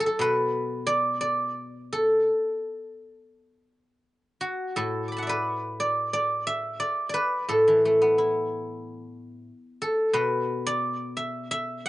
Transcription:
guzheng
Already playing: F#3 F#4
0.00 A4
0.06 A4
0.19 B2 B4
0.87 D5
1.21 D5
1.93 A4
4.41 F#4
4.76 A2 A4
5.08 B5 D6
5.17 F#5 A5
5.23 E5
5.27 B4 D5
5.80 D5
6.13 D5
6.47 E5
6.80 D5
7.09 D5
7.14 B4
7.49 A2 A4
7.68 E3
7.85 A3
8.02 B3
8.18 E4
9.82 A4
10.13 B2 B4
10.67 D5
11.17 E5
11.51 E5
11.86 F#5

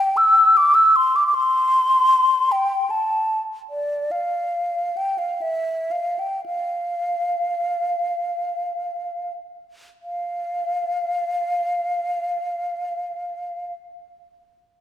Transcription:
flute
Already playing: G5
0.17 E6
0.57 D6
0.75 E6
0.96 C6
1.16 D6
1.27 D6
1.34 C6
2.52 G5
2.90 A5
3.70 D5
4.11 F5
4.97 G5
5.18 F5
5.42 E5
5.91 F5
6.19 G5
6.46 F5
10.02 F5

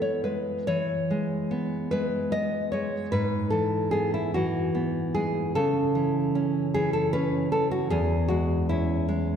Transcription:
nylon-string guitar
Already playing: E3 G#3 A3 B3
0.02 C#5
0.24 G#3 B4
0.67 E3 C#5
1.11 G#3
1.51 B3
1.91 G#3 B4
2.32 B3 D#5
2.72 G#3 C#5
3.12 G#2 B4
3.50 E3 A4
3.91 B3 G#4
4.14 E4
4.34 E3 F#4
4.75 B3
5.15 G#3 G#4
5.55 C#3 A4
5.95 E3
6.35 C#4
6.74 E3 G#4
6.93 A4
7.13 C#4 B4
7.52 E3 A4
7.71 F#4
7.90 E2 G#4
8.28 G#3 F#4
8.69 C#4 E4
9.09 G#3

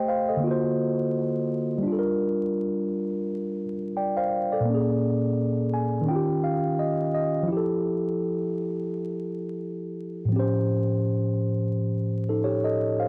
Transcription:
tine electric piano
Already playing: A3 G4 C5 D#5 G5
0.08 C5 F5
0.29 A4 D#5
0.37 D3 A#3
0.44 F4 F#4
0.51 C5
1.78 G3
1.83 D4
1.87 F4
1.92 A4
1.99 A#4
3.97 D5 G5
4.17 C5 F5
4.52 A4 D5
4.60 A#2
4.65 A#3
4.70 C#4
4.75 G#4
5.74 G#5
6.02 D#3
6.06 C#4 G5
6.11 F4
6.16 G4
6.44 F5
6.79 D#5
7.14 D#5
7.43 F3
7.48 E4
7.52 G4
7.57 A4
10.25 A2 F3
10.32 C4 G4
10.39 C#4 C5
12.29 D#4 A4
12.44 G4 C#5
12.64 A4 D#5
13.00 C5 F5

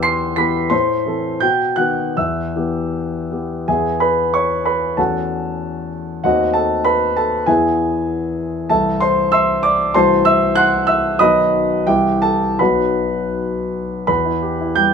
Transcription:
grand piano
Already playing: E2 E3 B3 G4 E5 E6
0.03 C6 C7
0.36 E3 B3 G4 B5 B6
0.70 A2 C5 C6
1.06 E3 C4 A4
1.40 B2 G5 G6
1.76 D#3 B3 F#4 F#5 F#6
2.17 E2 E5 E6
2.56 E3 B3 G4
3.31 E3 B3 G4
3.68 E2 E3 B3 E4 G#4 E5 G#5
4.00 B4 B5
4.34 C#5 C#6
4.65 B4 B5
4.97 E2 A3 C#4 F#4 A4 F#5 A5
6.24 D#2 A3 C4 F#4 D#5 F#5
6.54 A4 A5
6.85 B4 B5
7.17 A4 A5
7.46 E2 E3 B3 E4 G#4 E5 G#5
8.70 C2 E3 A3 E4 A4 E5 A5
9.00 C5 C6
9.32 E5 C6 E6
9.63 D5 D6
9.94 C2 E3 A3 F#4 C5 A5 C6
10.25 E5 E6
10.55 F#5 C6 F#6
10.87 E5 E6
11.19 B1 D#3 B3 F#4 D#5 B5 D#6
11.87 C2 E3 E4 G4 E5 G5
12.22 A4 A5
12.59 B1 F#3 B3 D#4 B4 F#5 B5
14.07 E2 B4 B5
14.25 E4
14.42 G4
14.61 E4
14.75 G3 G5 G6

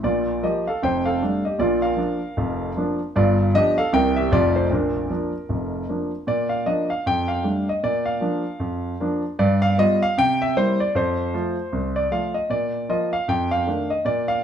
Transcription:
grand piano
0.03 A#1 A#2 F4 D5
0.43 F3 A#3 G4 D#5
0.67 A4 F5
0.83 F1 F2 C5 G5
1.06 A4 F5
1.22 G3 A3 D4
1.45 G4 D#5
1.58 A#1 A#2 F4 D5
1.82 A#4 F5
1.96 F3 A#3 D4
2.37 F1 F2
2.77 F3 A#3 D4
3.16 G1 G2 F4 D5
3.54 F3 B3 D4 G4 D#5
3.78 A4 F5
3.92 C2 C3 E3 A#3 C4 A#4 G5
4.16 G4 E5
4.31 F1 F2 F3 A3 C4 F4 D5
4.56 D#4 C5
4.71 A#1 A#2 D4 A#4
5.10 F3 A#3 D4
5.49 F1 F2
5.89 F3 A#3 D4
6.27 A#2 D5
6.49 F5
6.66 F3 A#3 D4 D#5
6.90 F5
7.06 F2 G5
7.28 F5
7.43 G3 A3 D4
7.69 D#5
7.83 A#2 D5
8.06 F5
8.21 F3 A#3 D4
8.60 F2
9.00 F3 A#3 D4
9.39 G2 D5
9.62 F5
9.78 G3 B3 F4 D#5
10.03 F5
10.18 C3 G5
10.42 E5
10.57 G3 A#3 E4 C5
10.80 D5
10.95 F2 C5
11.34 F3 A3 F4
11.72 C2
11.96 D5
12.11 F3 A3 F4 F5
12.34 D#5
12.50 A#2 D5
12.89 F3 A#3 F4 D#5
13.13 F5
13.28 F2 G5
13.51 F5
13.67 D#3 A3 D4
13.90 D#5
14.05 A#2 D5
14.28 F5

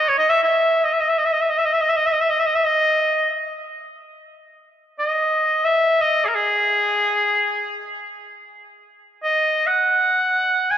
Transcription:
oboe
Already playing: D#5
0.09 C#5
0.18 D#5
0.30 E5
0.43 E5
0.84 D#5
0.93 E5
1.00 D#5
1.09 E5
1.18 D#5
1.25 E5
1.33 D#5
1.41 E5
1.49 D#5
1.58 E5
1.65 D#5
1.73 E5
1.81 D#5
1.89 E5
1.96 D#5
2.06 E5
2.12 D#5
2.20 E5
2.29 D#5
2.39 E5
2.46 D#5
2.55 E5
2.65 D#5
4.99 D#5
5.65 E5
6.01 D#5
6.25 G#4 A#4
6.35 G#4
9.24 D#5
9.67 F#5
10.71 G#5

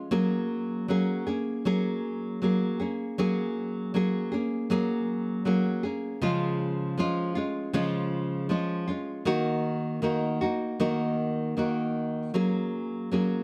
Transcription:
nylon-string guitar
Already playing: G#3 C#4 F4
0.11 F#3 A#3 C#4 G#4
0.88 F#3 A#3 C#4 G#4
1.27 A#3 C#4 G#4
1.65 F#3 A#3 C#4 G#4
2.42 F#3 A#3 C#4 G#4
2.80 A#3 C#4 G#4
3.18 F#3 A#3 C#4 G#4
3.94 F#3 A#3 C#4 G#4
4.32 A#3 C#4 G#4
4.70 F#3 A#3 C#4 G#4
5.45 F#3 A#3 C#4 G#4
5.83 A#3 C#4 G#4
6.21 C#3 F3 G#3 C#4 F4
6.98 F3 G#3 C#4 F4
7.35 G#3 C#4 F4
7.73 C#3 F3 G#3 C#4 F4
8.49 F3 G#3 C#4 F4
8.88 G#3 C#4 F4
9.25 D#3 A#3 D#4 F#4
10.02 D#3 A#3 D#4 F#4
10.41 A#3 D#4 F#4
10.80 D#3 A#3 D#4 F#4
11.57 D#3 A#3 D#4 F#4
12.34 F#3 A#3 C#4 G#4
13.12 F#3 A#3 C#4 G#4

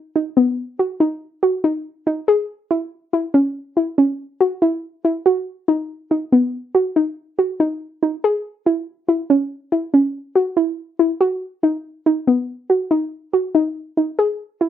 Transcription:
synth arpeggio sound
0.16 D#4
0.37 B3
0.79 F#4
1.00 D#4
1.43 F#4
1.64 D#4
2.07 D#4
2.28 G#4
2.71 E4
3.13 E4
3.34 C#4
3.77 E4
3.98 C#4
4.41 F#4
4.62 E4
5.05 E4
5.26 F#4
5.68 D#4
6.11 D#4
6.32 B3
6.75 F#4
6.96 D#4
7.39 F#4
7.60 D#4
8.03 D#4
8.24 G#4
8.66 E4
9.08 E4
9.30 C#4
9.72 E4
9.94 C#4
10.35 F#4
10.57 E4
10.99 E4
11.21 F#4
11.63 D#4
12.06 D#4
12.27 B3
12.70 F#4
12.91 D#4
13.33 F#4
13.55 D#4
13.97 D#4
14.19 G#4
14.61 E4

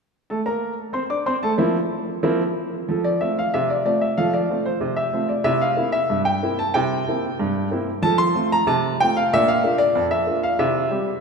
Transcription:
upright piano
0.30 A3 A4 A5
0.46 A#3 A#4 A#5
0.93 C4 C5 C6
1.10 D4 D5 D6
1.26 C4 C5 C6
1.43 A3 A4 A5
1.58 F3 A#3 C4 E4
2.23 F3 A#3 C4 E4
2.89 F3 A4
3.04 D5
3.21 A3 C4 F4 E5
3.39 F5
3.54 C3 E5
3.70 D5
3.85 A3 C4 F4 D5
4.01 E5
4.17 F3 A4 F5
4.34 D5
4.50 A3 C4 F4
4.66 C5
4.81 C3
4.96 E5
5.13 A3 C4 F4
5.29 D5
5.44 C3 E4 E5
5.61 F5
5.77 A#3 C4 E4
5.92 E5
6.10 G2
6.25 G5
6.43 A#3 C4 E4
6.59 A5
6.74 C3 E4 G5
7.08 A#3 C4 E4
7.39 G2
7.71 A#3 C4 E4
8.02 F3 A4 A5
8.18 C6
8.35 A3 C4 F4
8.52 A#5
8.67 C3 A5
9.00 A3 C4 F4 G5
9.17 F5
9.33 A#2 D4 E5
9.48 F5
9.64 A#3 D4 F4
9.78 D5
9.95 F2
10.11 E5
10.27 A#3 D4 F4
10.43 F5
10.59 C3 E4 E5
10.90 G3 C4 G4

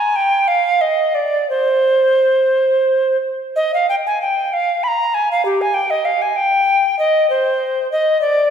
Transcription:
recorder
Already playing: G#5
0.16 G5
0.48 F5
0.81 D#5
1.15 D5
1.50 C5
3.56 D#5
3.74 F5
3.89 G5
4.07 G#5
4.22 G5
4.53 F5
4.83 B5
4.88 A#5
5.14 G#5
5.32 F5
5.45 G4
5.61 G#5
5.74 G5
5.90 D#5
6.05 F5
6.22 G#5
6.36 G5
6.99 D#5
7.30 C5
7.92 D#5
8.21 D5

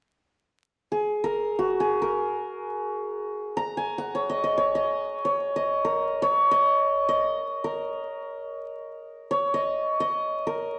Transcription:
santur
0.92 G#4
1.24 A#4
1.59 F#4
1.80 G#4
2.02 A#4
3.57 A#5
3.77 G#5
3.98 F#5
4.15 C#5
4.29 D#5
4.44 D#5
4.58 C#5
4.75 D#5
5.25 C#5
5.56 D#5
5.85 A#4
6.22 C#5
6.51 D#5
7.09 D#5
7.64 A#4
9.31 C#5
9.54 D#5
10.00 D#5
10.47 A#4

